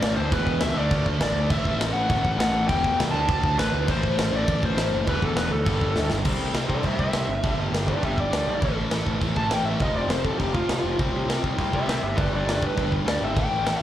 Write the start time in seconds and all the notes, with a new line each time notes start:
Already playing: A2 E3 A3 D5
0.02 A1, snare, crash
0.16 D2 C5
0.29 E1 E2 B2 E3 B4, kick, crash
0.47 E1, kick
0.60 C#2 E5, snare, crash
0.74 D2 D3 A3 D4
0.78 D5
0.91 D2, kick, crash
1.06 D2, kick
1.19 A1 D5, snare, crash
1.32 D2
1.49 A1 A2 E3 A3 E5, kick, crash
1.65 A1, kick
1.79 A1, snare, crash
1.93 A1 F#5
2.10 A1, kick, crash
2.24 A1, kick
2.37 A1 F#5, snare, crash
2.51 A1
2.67 E1 E2 B2 G5, kick, crash
2.71 E3
2.84 E1, kick
2.99 C2, snare, crash
3.11 D2 D3 A3 D4 A5
3.28 D2, kick, crash
3.43 D2, kick
3.58 A1 B4, snare, crash
3.72 D2
3.86 A1 A2 E3 A3 C5, kick, crash
4.03 A1, kick
4.18 A1, snare, crash
4.32 A1 D5
4.47 A1, kick, crash
4.63 A1 C5, kick
4.76 A1, snare, crash
4.91 F#1
5.05 E1 E2 B2 B4, kick, crash
5.09 E3
5.22 E1 A4, kick
5.35 E1 B4, snare, crash
5.50 D2 A4
5.65 G1 G2 D3 G3, kick, crash
5.81 G1, kick
5.96 D2, snare
6.10 G1, snare
6.25 C2 C3 G3 C4, kick, crash
6.39 C2
6.53 C2 C3 G3 C4, snare, crash
6.69 C2 A4 D5, kick
6.83 C2 C3 G3 C4 C5 E5, kick, crash
6.99 C2 E5, kick
7.13 C2 C3 G3 C4, snare, crash
7.27 G1
7.43 G1 G2 D3 G3, kick, crash
7.56 G1
7.71 G1 G2 D3 G3, snare, crash
7.88 B4 D5, kick
8.00 G1 G2 D3 G3, kick, crash
8.04 G4 E5
8.18 D5, kick
8.30 D2 G2 D3 G3, snare, crash
8.46 B1
8.59 A1 A2 E3 A3, kick, crash
8.76 A1
8.91 A1 A2 E3 A3, snare, crash
9.07 A1, kick
9.20 A1 A2 E3 A3, kick, crash
9.36 A1 A5, kick
9.48 A1 A2 E3 A3, snare, crash
9.53 G5
9.64 A1 E5
9.79 F1 F2 C3 F3 D#5, kick, crash
9.93 F1 D5
10.07 F1 F2 C3 F3 C5, snare, crash
10.24 A4, kick
10.38 F1 F2 C3 F3 G4, kick, crash
10.55 F4, kick
10.69 C2 F2 C3 F3, snare, crash
10.84 F1
10.98 C2 C3 G3 C4, kick, crash
11.12 C2
11.27 C2 C3 G3 C4, snare, crash
11.43 C2, kick
11.57 C2 C3 G3 C4, kick, crash
11.73 C2 C5 E5, kick
11.86 C2 C3 G3 C4 C5, snare, crash
11.90 E5
12.02 G1 G4 E5
12.15 G1 G2 D3 G3 B4 D5, kick, crash
12.31 G1 B4
12.35 D5
12.45 G1 G2 D3 G3, snare, crash
12.51 B4 D5
12.63 B4, kick
12.76 G1 G2 D3 G3, kick, crash
12.92 kick
13.04 D2 G2 D3 G3, snare, crash
13.09 D5
13.22 G#1 E5
13.33 A1 A2 E3 A3, kick, crash
13.39 G5
13.52 A1
13.63 A1 A2 E3 A3, snare, crash